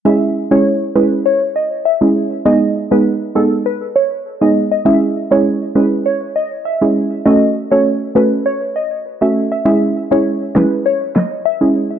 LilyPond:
<<
  \new Staff \with { instrumentName = "Synth pluck" } { \time 4/4 \key cis \minor \tempo 4 = 100 e''8 r16 cis''16 r8 b'16 r16 cis''16 r16 dis''16 r16 e''8. r16 | dis''8 r16 b'16 r8 a'16 r16 b'16 r16 cis''16 r8 dis''16 r16 dis''16 | e''8 r16 cis''16 r8 b'16 r16 cis''16 r16 dis''16 r16 e''8. r16 | dis''8 r16 cis''16 r8 b'16 r16 cis''16 r16 dis''16 r8 e''16 r16 e''16 |
e''8 r16 cis''16 r8 b'16 r16 cis''16 r16 dis''16 r16 e''8. r16 | }
  \new Staff \with { instrumentName = "Synth pluck" } { \time 4/4 \key cis \minor <gis cis' e' gis'>16 r8 <gis cis' e' gis'>16 r8 <gis cis' e' gis'>16 r4. <gis cis' e' gis'>16 r8 | <gis b dis' gis'>16 r8 <gis b dis' gis'>16 r8 <gis b dis' gis'>16 r4. <gis b dis' gis'>16 r8 | <gis cis' e' gis'>16 r8 <gis cis' e' gis'>16 r8 <gis cis' e' gis'>16 r4. <gis cis' e' gis'>16 r8 | <a cis' fis' a'>16 r8 <a cis' fis' a'>16 r8 <a cis' fis' a'>16 r4. <a cis' fis' a'>16 r8 |
<gis cis' e' gis'>16 r8 <gis cis' e' gis'>16 r8 <gis cis' e' gis'>16 r4. <gis cis' e' gis'>16 r8 | }
  \new DrumStaff \with { instrumentName = "Drums" } \drummode { \time 4/4 r4 r4 r4 r4 | r4 r4 r4 r4 | r4 r4 r4 r4 | r4 r4 r4 r4 |
r4 r8 <ss sn>8 r8 <ss sn>8 r4 | }
>>